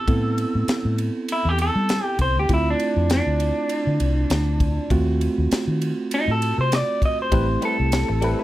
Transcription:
Already playing: clean electric guitar A4
0.07 fingered electric bass A2, tine electric piano B3 C4 E4 A4, kick, ride
0.38 ride
0.55 fingered electric bass A2
0.68 muted fingered electric bass stroke, snare, ride
0.85 fingered electric bass A2
0.98 ride
1.29 clean electric guitar E4, ride
1.45 fingered electric bass E2, clean electric guitar G4
1.58 clean electric guitar A4, ride
1.76 fingered electric bass G3
1.89 snare, ride
2.04 clean electric guitar G4
2.19 fingered electric bass C2, clean electric guitar C5, kick, ride
2.36 fingered electric bass D2, clean electric guitar G4
2.49 fingered electric bass D2, tine electric piano A3 C4 E4 F4, kick, ride
2.54 clean electric guitar E4
2.70 clean electric guitar D4
2.80 ride
2.96 fingered electric bass F2
3.10 clean electric guitar D4, snare, ride
3.27 fingered electric bass D2
3.40 ride
3.69 ride
3.87 fingered electric bass D3
4.00 fingered electric bass C2, ride
4.30 fingered electric bass D2, snare, ride
4.60 kick, ride
4.90 fingered electric bass D#2, tine electric piano A3 C4 F4 F#4, kick, ride
5.21 ride
5.38 fingered electric bass D#2
5.51 muted fingered electric bass stroke, snare, ride
5.67 fingered electric bass D#3
5.82 ride
6.11 clean electric guitar D#4, ride
6.28 fingered electric bass A2, clean electric guitar A4
6.42 ride
6.58 fingered electric bass C3, clean electric guitar C5
6.72 clean electric guitar D5, snare, ride
7.02 clean electric guitar D#5, kick, ride
7.22 clean electric guitar C5
7.32 fingered electric bass A1, clean electric guitar G3 C4 E4 B4, tine electric piano A3 C4 E4 G4, kick, ride
7.49 muted clean electric guitar stroke
7.62 clean electric guitar G3 C4 E4 A4 B4, ride
7.78 fingered electric bass C2, muted clean electric guitar stroke
7.92 snare, ride
8.09 fingered electric bass A1, muted clean electric guitar stroke
8.22 clean electric guitar G3 C4 E4 B4, ride
8.39 clean electric guitar E4 B4

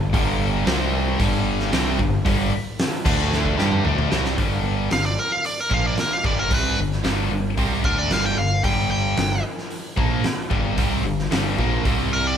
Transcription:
Already playing: picked electric bass G1
0.13 picked electric bass G1, distorted electric guitar G2 D3 G3, kick, open hi-hat
0.66 picked electric bass C2, distorted electric guitar C3 G3 C4, snare, open hi-hat
1.19 picked electric bass G1, distorted electric guitar G2 D3 G3, kick, open hi-hat
1.60 snare
1.72 picked electric bass C2, distorted electric guitar C3 G3 C4, snare, open hi-hat
1.99 picked electric bass G1, distorted electric guitar G2 D3, kick
2.25 picked electric bass G1, distorted electric guitar G2 D3 G3, kick, open hi-hat
2.79 snare, open hi-hat
3.05 picked electric bass D2, distorted electric guitar D3 A3 D4, kick, crash
3.33 snare
3.45 kick
3.58 picked electric bass G2, distorted electric guitar G3 D4 G4, snare
3.72 mid tom
3.84 picked electric bass D2, distorted electric guitar D3 A3 D4, mid tom
3.98 mid tom
4.10 picked electric bass C2, distorted electric guitar C3 G3 C4, snare
4.25 snare
4.37 picked electric bass G1, distorted electric guitar G2 D3 G3, kick, open hi-hat
4.90 picked electric bass G1, distorted electric guitar G2 D3, lead electric guitar F5, snare, open hi-hat
5.06 lead electric guitar D5
5.19 lead electric guitar A#4
5.32 lead electric guitar F5
5.44 lead electric guitar D5, open hi-hat
5.60 lead electric guitar A#4
5.70 picked electric bass A#1, distorted electric guitar A#2 F3 A#3, lead electric guitar F5, kick
5.87 lead electric guitar D5
5.97 lead electric guitar A#4, snare, open hi-hat
6.13 lead electric guitar F5
6.24 picked electric bass G1, distorted electric guitar G2 D3 G3, lead electric guitar D5, kick
6.39 lead electric guitar A#4
6.50 picked electric bass C2, distorted electric guitar C3 G3 C4, lead electric guitar B4, kick, open hi-hat
6.77 picked electric bass G1, distorted electric guitar G2 D3
6.92 snare
7.04 picked electric bass G1, distorted electric guitar G2 D3 G3, snare, open hi-hat
7.31 picked electric bass G1, distorted electric guitar G2 D3
7.57 picked electric bass C2, distorted electric guitar C3 G3 C4, kick, open hi-hat
7.84 picked electric bass D2, distorted electric guitar D3 A3 D4, lead electric guitar A#4, kick
7.99 lead electric guitar D5
8.10 picked electric bass G1, distorted electric guitar G2 D3 G3, lead electric guitar F5, snare, open hi-hat
8.25 lead electric guitar G5
8.37 picked electric bass G1, distorted electric guitar G2 D3, lead electric guitar F5
8.63 picked electric bass G1, distorted electric guitar G2 D3 G3, lead electric guitar G5, kick, open hi-hat
8.91 lead electric guitar G5
9.17 picked electric bass G1, distorted electric guitar G2 D3, snare, open hi-hat
9.58 snare
9.71 open hi-hat
9.97 picked electric bass A#1, distorted electric guitar A#2 F3 A#3, kick
10.24 snare, open hi-hat
10.50 picked electric bass G1, distorted electric guitar G2 D3 G3, kick
10.77 picked electric bass C2, distorted electric guitar C3 G3 C4, kick, open hi-hat
11.04 picked electric bass G1, distorted electric guitar G2 D3
11.19 snare
11.31 picked electric bass G1, distorted electric guitar G2 D3 G3, snare, open hi-hat
11.58 picked electric bass A#1, distorted electric guitar A#2 F3 A#3, kick
11.85 picked electric bass C2, distorted electric guitar C3 G3 C4, kick, open hi-hat
12.13 lead electric guitar A#4
12.27 lead electric guitar D5

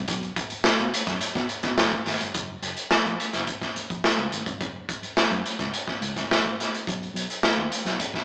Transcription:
0.08 fingered electric bass B1, kick, closed hi-hat
0.23 closed hi-hat
0.36 kick, closed hi-hat
0.50 muted fingered electric bass stroke, closed hi-hat
0.64 muted fingered electric bass stroke, snare
0.79 fingered electric bass B2, closed hi-hat
0.94 closed hi-hat
1.07 fingered electric bass F#2, kick, snare, closed hi-hat
1.21 closed hi-hat
1.35 fingered electric bass B2, kick, snare, closed hi-hat
1.49 closed hi-hat
1.63 fingered electric bass B2, kick, snare, closed hi-hat
1.78 fingered electric bass F#1, snare
1.91 kick, closed hi-hat
2.06 fingered electric bass G#1, snare, open hi-hat
2.21 fingered electric bass G1, closed hi-hat
2.34 fingered electric bass F#1, kick, closed hi-hat
2.62 fingered electric bass F#1, closed hi-hat
2.77 closed hi-hat
2.91 muted fingered electric bass stroke, snare
3.05 fingered electric bass A#1, closed hi-hat
3.20 closed hi-hat
3.33 fingered electric bass F#1, snare, closed hi-hat
3.47 kick, closed hi-hat
3.62 kick, snare, closed hi-hat
3.76 muted fingered electric bass stroke, closed hi-hat
3.90 fingered electric bass A#1, kick, closed hi-hat
4.04 snare
4.18 fingered electric bass C#2, closed hi-hat
4.32 fingered electric bass G#1, closed hi-hat
4.46 fingered electric bass G1, kick, closed hi-hat
4.61 fingered electric bass F#1, kick, closed hi-hat
4.89 kick, closed hi-hat
5.03 muted fingered electric bass stroke, closed hi-hat
5.17 muted fingered electric bass stroke, snare
5.31 fingered electric bass F#2, closed hi-hat
5.46 closed hi-hat
5.59 fingered electric bass C#2, kick, snare, closed hi-hat
5.73 closed hi-hat
5.88 kick, snare
6.01 fingered electric bass C#2, closed hi-hat
6.16 kick, snare, closed hi-hat
6.31 snare
6.45 kick, closed hi-hat
6.60 snare, closed hi-hat
6.74 closed hi-hat
6.87 fingered electric bass B1, kick, closed hi-hat
7.03 closed hi-hat
7.14 fingered electric bass B1, closed hi-hat
7.30 closed hi-hat
7.43 muted fingered electric bass stroke, snare
7.57 fingered electric bass D#2
7.72 closed hi-hat
7.85 fingered electric bass B1, snare, closed hi-hat
8.00 kick, closed hi-hat
8.14 kick, snare

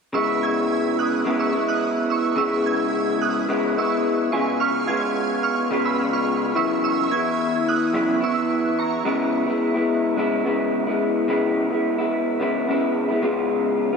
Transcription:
0.13 clean electric guitar C#3 G#3 B3, synth bell C#6 E6
0.17 clean electric guitar E4
0.43 synth bell E6 G#6
0.99 synth bell D#6 F#6
1.25 clean electric guitar C#3 G#3 B3 E4
1.40 synth bell C#6 E6
1.53 clean electric guitar G#3 B3 E4
1.68 synth bell D#6 F#6
2.10 synth bell C#6 E6
2.36 clean electric guitar C#3 G#3 B3, synth bell C#6 E6
2.41 clean electric guitar E4
2.66 synth bell E6 G#6
3.21 synth bell D#6 F#6
3.49 clean electric guitar C#3 G#3 B3 E4
3.77 clean electric guitar G#3 B3 E4, synth bell C#6 E6
4.32 clean electric guitar C#3 G#3 B3 F4, synth bell G#5 C#6
4.60 synth bell C#6 F6
4.87 clean electric guitar G#3 B3 F4, synth bell F6 G#6
5.43 synth bell C#6 F6
5.71 clean electric guitar C#3 G#3 B3 F4
5.85 synth bell B5 E6
6.13 synth bell C#6 F6
6.55 clean electric guitar F#2 C#3 E3 B3 E4, synth bell C#6 E6
6.84 synth bell C#6 E6
7.10 clean electric guitar E3 B3 E4, synth bell E6 G#6
7.69 synth bell D#6 F#6
7.93 clean electric guitar F#2 C#3 E3 B3 E4
8.21 clean electric guitar E3 B3 E4, synth bell C#6 E6
8.79 synth bell A#5 C#6
9.05 clean electric guitar C#3 G#3 B3 E4
9.46 clean electric guitar G#3 B3 E4
9.74 clean electric guitar G#3 B3 E4
10.16 clean electric guitar C#3 G#3 B3 E4
10.44 clean electric guitar C#3 G#3 B3 E4
10.87 clean electric guitar G#3 B3 E4
11.28 clean electric guitar C#3 G#3 B3 E4
11.71 clean electric guitar G#3 B3 E4
11.98 clean electric guitar G#3 B3 E4
12.40 clean electric guitar C#3 G#3 B3 E4
12.67 clean electric guitar C#3 G#3 B3 E4
13.09 clean electric guitar G#3 B3 E4
13.22 clean electric guitar C#3 G#3 B3 F4
13.93 clean electric guitar F4

